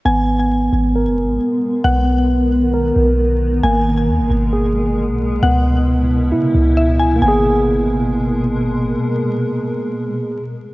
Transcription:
<<
  \new Staff \with { instrumentName = "Synth pluck" } { \time 4/4 \key gis \minor \tempo 4 = 134 gis''4 r2. | fis''4 r2. | gis''4 r2. | fis''4 r2 e''8 gis''8 |
gis''2. r4 | r1 | }
  \new Staff \with { instrumentName = "Tine electric piano" } { \time 4/4 \key gis \minor b2 ais'2 | b2 ais'2 | ais2 gis'2 | b2 e'2 |
<ais b gis'>1~ | <ais b gis'>1 | }
  \new Staff \with { instrumentName = "Ambient pad" } { \clef bass \time 4/4 \key gis \minor << { ais'1~ | ais'1~ | ais'1 | r1 |
<b, gis ais'>1~ | <b, gis ais'>1 | } \\ { <gis b>1 | <dis b>1 | <b, gis>1 | <cis e'>1 |
r1 | r1 | } >> }
  \new Staff \with { instrumentName = "808-style bass" } { \clef bass \time 4/4 \key gis \minor gis,,4. gis,,8. fis,,16. gis,,16. r4 | b,,2~ b,,8 b,,4. | gis,,4 dis,16 gis,,16 gis,,4.~ gis,,16 b,,8. | cis,2 cis8 cis,4. |
gis,,1 | r1 | }
>>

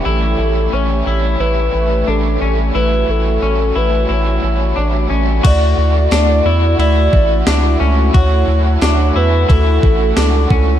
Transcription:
<<
  \new Staff \with { instrumentName = "Soft synth lead" } { \time 4/4 \key d \major \tempo 4 = 89 a'4 cis''4 b'4 a'8. r16 | b'8 a'4 b'8 cis''4. r8 | d''2 d''4. r8 | cis''4. b'8 a'4. a'8 | }
  \new Staff \with { instrumentName = "Analog synth pad" } { \time 4/4 \key d \major << { <g' cis''>1 | fis'1 | <a e' fis'>1~ | <a e' fis'>1 | } \\ { a1~ | a1 | r1 | r1 | } >> }
  \new Staff \with { instrumentName = "Clean electric guitar" } { \time 4/4 \key d \major e'4 cis'8 e'8 e'4 d'8 cis'8 | e'4 cis'8 e'8 e'4 d'8 cis'8 | fis'4 d'8 e'8 e'4 d'8 cis'8 | fis'4 d'8 e'8 e'4 d'8 cis'8 | }
  \new Staff \with { instrumentName = "Overdriven electric guitar" } { \time 4/4 \key d \major <a, e g cis' e'>8 <g cis' e'>8 <e g cis' e'>8 <g cis' e'>8 <a, e g cis' e'>8 <g cis' e'>8 <e g cis' e'>8 <g cis' e'>8 | <a, e g cis' e'>8 <g cis' e'>8 <e g cis' e'>8 <g cis' e'>8 <a, e g cis' e'>8 <g cis' e'>8 <e g cis' e'>8 <g cis' e'>8 | <d a fis'>8 <a fis'>8 <d a fis'>8 <a fis'>8 <d a fis'>8 <a fis'>8 <a fis'>8 <a cis' fis'>8 | <d a cis' fis'>8 <a cis' fis'>8 <d a cis' fis'>8 <a cis' fis'>8 <d a cis' fis'>8 <a cis' fis'>8 <a cis' fis'>8 <a cis' fis'>8 | }
  \new Staff \with { instrumentName = "Sub bass" } { \clef bass \time 4/4 \key d \major a,,8 a,,8 a,,8 a,,8 a,,8 a,,8 a,,8 a,,8 | a,,8 a,,8 a,,8 a,,8 a,,8 a,,8 a,,8 a,,8 | d,8 d,8 d,8 e,8 d,8 a,,8 cis,8 cis,8 | d,8 d,8 d,8 e,8 d,8 a,,8 cis,8 cis,8 | }
  \new DrumStaff \with { instrumentName = "Drums" } \drummode { \time 4/4 r4 r4 r4 r4 | r4 r4 r4 r4 | <cymc bd cymr>4 <cymr sn tamb>4 cymr8 bd8 <cymr sn tamb>4 | <bd cymr>4 <cymr sn tamb>4 <bd cymr>8 bd8 <cymr sn tamb>8 bd8 | }
>>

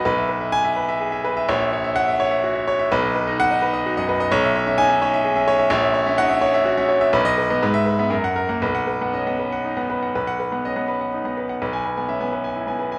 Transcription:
<<
  \new Staff \with { instrumentName = "Grand piano" } { \time 3/4 \key b \major \tempo 4 = 125 << { r4 gis''8 r4. | r4 fis''8 r4. | r4 fis''8 r4. | r4 gis''8 r4. |
r4 fis''8 r4. | r16 dis''8 r8 e''8 r8 fis''8 r16 | r16 fis''8 r2 r16 | r16 fis''8 r2 r16 |
r16 gis''8 r2 r16 | } \\ { b'16 e''16 b'16 e''8 e''16 b'16 e''16 gis'16 e''16 b'16 e''16 | cis''16 e''16 cis''16 e''8 e''16 cis''16 e''16 fis'16 e''16 cis''16 e''16 | b'16 dis''16 b'16 dis''8 dis''16 b'16 dis''16 fis'16 dis''16 b'16 dis''16 | cis''16 e''16 cis''16 e''8 e''16 cis''16 e''16 gis'16 e''16 cis''16 e''16 |
cis''16 e''16 cis''16 e''8 e''16 cis''16 e''16 fis'16 e''16 cis''16 e''16 | b'8 b'16 dis''16 b'8 b'16 e''16 ais'8 ais'16 fis''16 | b'8 b'16 fis''16 dis''16 fis''16 b'16 fis''16 dis'16 fis''16 b'16 fis''16 | b'8 b'16 fis''16 dis''16 fis''16 b'16 fis''16 dis'16 fis''16 b'16 fis''16 |
b'8 b'16 gis''16 e''16 gis''16 b'16 gis''16 e'16 gis''16 b'16 gis''16 | } >> }
  \new Staff \with { instrumentName = "Grand piano" } { \time 3/4 \key b \major b,,2. | ais,,2. | b,,8. dis'8 dis'8 r16 dis'16 fis,8 r16 | b,,8. cis'16 dis'16 cis'8 r8 cis'8 r16 |
ais,,8. cis'16 dis'16 cis'8 r8 cis'8 r16 | b,,8. b16 gis,8. b16 fis,8. ais16 | b,,8. b16 cis'16 b8 r8 b8 r16 | b,,8. b16 cis'16 b8 r8 b8 r16 |
b,,8. b16 cis'16 b8 r8 b8 r16 | }
>>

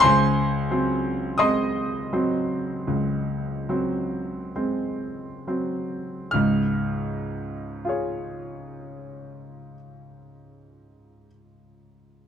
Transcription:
<<
  \new Staff \with { instrumentName = "Grand piano" } { \time 4/4 \key gis \phrygian \tempo 4 = 40 << { <bis' gis'' bis''>4 <dis'' bis'' dis'''>2. | eis'''1 | } \\ { r1 | r4 <eis' gis' cis''>2. | } >> }
  \new Staff \with { instrumentName = "Grand piano" } { \clef bass \time 4/4 \key gis \phrygian cis,8 <fis bis>8 <gis bis>8 <fis bis>8 cis,8 <fis bis>8 <gis bis>8 <fis bis>8 | <cis, gis,>1 | }
>>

